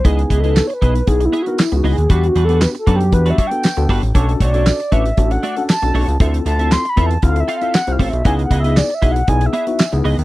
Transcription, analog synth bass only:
0.05 0.25 C#2 loud
0.30 0.62 C#2 loud
0.82 1.02 B1 medium
1.08 1.28 B1 loud
1.72 1.82 C#2 medium
1.84 1.95 C#2 medium
1.98 2.08 D#2 medium
2.10 2.30 E2 loud
2.35 2.67 E2 loud
2.87 3.14 F#2 medium
3.13 3.33 E2 loud
3.77 3.87 D2 medium
3.89 4.00 G1 medium
4.03 4.13 A1 medium
4.15 4.35 B1 loud
4.40 4.72 B1 loud
4.92 5.13 A1 medium
5.18 5.38 A1 loud
5.82 5.92 B1 medium
5.94 6.05 B1 loud
6.08 6.18 C#2 medium
6.20 6.41 D2 loud
6.46 6.77 D2 loud
6.97 7.18 E2 loud
7.23 7.43 D2 loud
7.88 7.97 C2 medium
8.00 8.10 A1 medium
8.13 8.23 B1 medium
8.25 8.46 C#2 loud
8.51 8.82 C#2 loud
9.03 9.23 B1 medium
9.28 9.48 B1 loud
9.93 10.02 C#2 medium
10.05 10.16 C#2 loud
10.18 10.24 D#2 loud

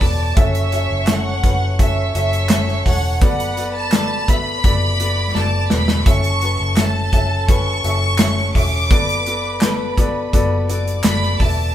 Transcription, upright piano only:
0.00 0.39 B3 medium
0.00 0.37 F#4 medium
0.00 0.37 A4 medium
0.00 0.39 C#5 medium
0.00 0.02 D5 loud
0.00 0.28 D5 medium
0.36 0.63 C#4 medium
0.36 0.63 F#4 medium
0.36 0.63 A4 medium
0.36 0.64 E5 loud
0.72 0.99 C#4 medium
0.72 0.99 F#4 medium
0.72 0.99 A4 medium
0.72 0.99 E5 medium
1.07 1.34 C#4 medium
1.07 1.34 F#4 medium
1.07 1.35 A4 medium
1.07 1.35 E5 medium
1.43 1.70 C#4 medium
1.43 1.70 F#4 medium
1.43 1.70 A4 medium
1.43 1.70 B4 medium
1.79 2.06 C#4 medium
1.79 2.06 F#4 medium
1.79 2.06 A4 medium
1.79 2.06 E5 medium
2.14 2.41 C#4 medium
2.14 2.41 F#4 medium
2.14 2.42 A4 medium
2.14 2.42 E5 medium
2.50 2.77 C#4 medium
2.50 2.77 F#4 medium
2.50 2.77 A4 medium
2.50 2.77 E5 medium
2.85 3.12 C#4 medium
2.85 3.12 F#4 medium
2.85 3.13 A4 medium
2.85 3.13 C#5 medium
3.21 3.48 B3 loud
3.21 3.48 F#4 medium
3.21 3.48 A4 medium
3.21 3.49 D5 loud
3.57 3.83 B3 medium
3.57 3.84 F#4 medium
3.57 3.84 A4 medium
3.57 3.84 D5 medium
3.93 4.19 B3 medium
3.93 4.19 F#4 medium
3.93 4.20 A4 medium
3.93 4.20 D5 medium
4.29 4.55 B3 medium
4.29 4.55 F#4 medium
4.29 4.55 A4 medium
4.29 4.56 E5 medium
4.64 4.90 B3 medium
4.64 4.91 F#4 medium
4.64 4.91 A4 medium
4.64 4.91 D5 medium
5.00 5.26 B3 medium
5.00 5.26 F#4 medium
5.00 5.26 A4 medium
5.00 5.27 D5 medium
5.35 5.61 B3 medium
5.35 5.62 F#4 medium
5.35 5.62 A4 medium
5.35 5.62 D5 medium
5.70 5.97 B3 medium
5.70 5.97 F#4 medium
5.70 5.97 A4 medium
5.70 5.97 B4 medium
6.06 6.32 C#4 loud
6.06 6.33 F#4 medium
6.06 6.33 A4 medium
6.06 6.33 E5 loud
6.41 6.68 C#4 medium
6.41 6.68 F#4 medium
6.41 6.69 A4 medium
6.41 6.69 B4 medium
6.77 7.04 C#4 medium
6.77 7.04 F#4 medium
6.77 7.04 A4 medium
6.77 7.04 E5 medium
7.12 7.39 C#4 medium
7.12 7.39 F#4 medium
7.12 7.40 A4 medium
7.12 7.40 E5 medium
7.48 7.75 C#4 medium
7.48 7.75 F#4 medium
7.48 7.75 A4 medium
7.48 7.75 B4 loud
7.84 8.11 C#4 medium
7.84 8.11 F#4 medium
7.84 8.11 A4 medium
7.84 8.11 E5 medium
8.19 8.46 C#4 medium
8.19 8.46 F#4 medium
8.19 8.46 A4 medium
8.19 8.47 E5 medium
8.55 8.82 C#4 medium
8.55 8.82 F#4 medium
8.55 8.82 A4 medium
8.55 8.82 E5 medium
8.91 9.17 B3 loud
8.91 9.18 F#4 medium
8.91 9.18 A4 medium
8.91 9.18 D5 loud
9.26 9.53 B3 medium
9.26 9.53 F#4 medium
9.26 9.53 A4 medium
9.26 9.54 D5 medium
9.62 9.89 B3 medium
9.62 9.89 F#4 medium
9.62 9.89 A4 medium
9.62 9.89 B4 loud
9.98 10.24 B3 medium
9.98 10.24 F#4 medium
9.98 10.25 A4 medium
9.98 10.25 D5 loud
10.33 10.60 B3 loud
10.33 10.60 F#4 loud
10.33 10.60 A4 loud
10.33 10.60 D5 loud
10.69 10.95 B3 medium
10.69 10.96 F#4 medium
10.69 10.96 A4 medium
10.69 10.96 D5 loud
11.05 11.31 B3 medium
11.05 11.31 F#4 medium
11.05 11.32 A4 medium
11.05 11.32 D5 medium
11.41 11.67 B3 medium
11.41 11.67 F#4 medium
11.41 11.67 A4 medium
11.41 11.68 E5 medium

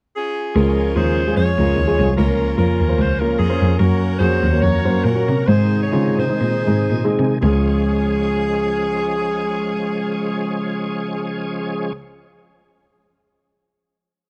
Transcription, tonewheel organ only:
0.55 2.14 F3 medium
0.55 2.14 G#3 soft
0.55 2.14 C#4 medium
0.55 2.14 G#4 medium
2.17 3.76 F3 medium
2.17 3.76 A#3 soft
2.17 3.76 C#4 soft
2.17 3.76 A#4 medium
3.79 5.44 F#3 medium
3.79 5.44 A#3 soft
3.79 5.44 C#4 soft
3.79 5.44 A#4 medium
5.48 7.39 C3 medium
5.48 7.38 D#3 medium
5.48 7.38 G#3 soft
5.48 7.38 G#4 medium
7.42 11.93 F3 medium
7.42 11.93 G#3 medium
7.42 11.93 C#4 medium
7.42 11.93 G#4 medium

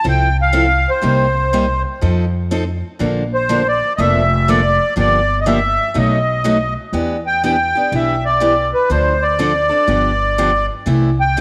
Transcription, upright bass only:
0.05 0.84 C2 medium
1.03 1.82 C2 medium
2.02 2.81 F2 loud
3.00 3.79 A#1 medium
3.98 4.77 F1 medium
4.97 5.76 G1 medium
5.95 6.74 B1 medium
6.93 7.72 E2 medium
7.92 8.71 B1 medium
8.90 9.69 D2 medium
9.88 10.67 G1 medium
10.86 11.41 C2 medium

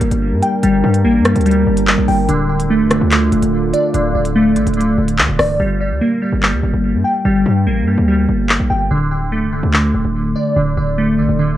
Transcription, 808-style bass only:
0.01 0.11 G1 loud
0.11 0.34 G1 loud
0.32 0.42 G2 loud
0.63 0.83 G1 loud
0.84 1.06 G2 loud
1.05 1.22 A1 loud
1.20 1.35 G2 loud
1.36 1.65 D2 loud
1.67 1.96 G1 loud
1.98 2.08 A#1 loud
2.08 2.28 G1 loud
2.29 2.82 D1 loud
2.80 3.00 C1 loud
3.01 3.31 D2 loud
3.32 3.42 D1 loud
3.43 3.72 D1 loud
3.94 4.14 D1 loud
4.15 4.58 D1 loud
4.56 4.66 A1 loud
4.67 4.96 D1 loud
4.98 5.20 D1 loud
5.18 5.28 D2 loud
5.29 5.39 D1 loud
5.39 5.59 C1 loud
5.60 5.92 G1 loud
5.91 6.01 D2 medium
6.32 6.54 G1 loud
6.53 6.63 D2 loud
6.63 6.73 G1 loud
6.74 6.96 G1 loud
6.94 7.04 G2 medium
7.25 7.45 G1 loud
7.46 7.68 G2 loud
7.67 7.84 A1 loud
7.82 7.97 G2 loud
7.98 8.28 D2 loud
8.29 8.59 G1 loud
8.60 8.70 A#1 loud
8.70 8.90 G1 loud
8.91 9.44 D1 loud
9.43 9.62 C1 loud
9.63 9.93 D2 loud
9.94 10.04 D1 loud
10.05 10.34 D1 loud
10.56 10.76 D1 loud
10.77 11.20 D1 loud
11.18 11.28 A1 loud
11.29 11.57 D1 loud

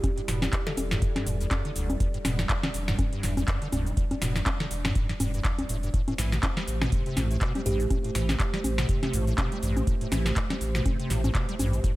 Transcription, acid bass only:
0.04 0.11 E2 medium
0.18 0.21 G2 loud
0.28 0.44 B2 medium
0.42 0.48 E2 loud
0.53 0.57 E2 medium
0.67 0.73 D3 loud
0.91 1.00 F#2 loud
1.02 1.13 G2 medium
1.16 1.28 G2 loud
1.27 1.38 E2 medium
1.40 1.46 E2 loud
1.51 1.63 F#2 loud
1.65 1.71 D3 loud
1.76 1.91 D2 loud
1.90 1.96 E2 medium
2.00 2.08 E2 medium
2.14 2.18 G2 loud
2.25 2.40 B2 medium
2.39 2.45 E2 loud
2.50 2.54 E2 medium
2.63 2.69 D3 loud
2.88 2.97 F#2 loud
2.99 3.10 G2 medium
3.13 3.25 G2 loud
3.23 3.35 E2 medium
3.37 3.43 E2 loud
3.48 3.59 F#2 loud
3.62 3.68 D3 loud
3.72 3.88 D2 loud
3.86 3.92 E2 medium
3.97 4.05 E2 medium
4.11 4.15 G2 loud
4.22 4.37 B2 medium
4.36 4.41 E2 loud
4.46 4.51 E2 medium
4.60 4.66 D3 loud
4.85 4.94 F#2 loud
4.95 5.07 G2 medium
5.09 5.13 G2 loud
5.20 5.32 G2 medium
5.34 5.40 G2 loud
5.45 5.52 E2 medium
5.59 5.64 D2 medium
5.69 5.77 A2 medium
5.83 5.89 G2 medium
5.94 6.01 A2 medium
6.08 6.14 A2 loud
6.18 6.34 E3 medium
6.32 6.38 A2 loud
6.43 6.48 A2 medium
6.57 6.63 G3 loud
6.82 6.90 B2 loud
6.92 7.04 C3 medium
7.06 7.18 C3 loud
7.17 7.28 A2 medium
7.31 7.37 A2 loud
7.41 7.53 B2 loud
7.55 7.61 G3 loud
7.66 7.81 G2 loud
7.80 7.86 A2 medium
7.90 7.98 A2 medium
8.04 8.10 A2 loud
8.15 8.31 E3 medium
8.29 8.35 A2 loud
8.40 8.44 A2 medium
8.54 8.59 G3 loud
8.78 8.87 B2 loud
8.89 9.00 C3 medium
9.03 9.15 C3 loud
9.13 9.25 A2 medium
9.27 9.33 A2 loud
9.38 9.50 B2 loud
9.52 9.58 G3 loud
9.63 9.78 G2 loud
9.77 9.82 A2 medium
9.87 9.95 A2 medium
10.01 10.07 A2 loud
10.12 10.27 E3 medium
10.26 10.32 A2 loud
10.36 10.41 A2 medium
10.50 10.56 G3 loud
10.75 10.84 B2 loud
10.86 10.97 C3 medium
10.99 11.12 C3 loud
11.10 11.22 A2 medium
11.24 11.30 A2 loud
11.35 11.46 B2 loud
11.49 11.55 G3 loud
11.59 11.75 G2 loud
11.73 11.79 A2 medium
11.84 11.92 A2 medium

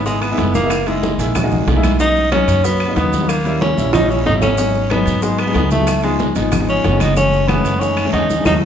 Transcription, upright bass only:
0.00 0.35 G#1 medium
0.38 1.13 F#1 medium
1.18 1.64 A#1 medium
1.67 2.42 B1 medium
2.48 2.93 F#2 medium
2.97 3.72 D#2 medium
3.78 4.23 A#1 medium
4.26 5.01 G#1 medium
5.07 5.52 G#2 medium
5.55 6.30 C#2 medium
6.36 6.81 G#1 medium
6.84 7.60 F#1 medium
7.65 8.10 F#2 medium
8.13 8.44 D#2 medium
8.46 8.58 D#2 medium

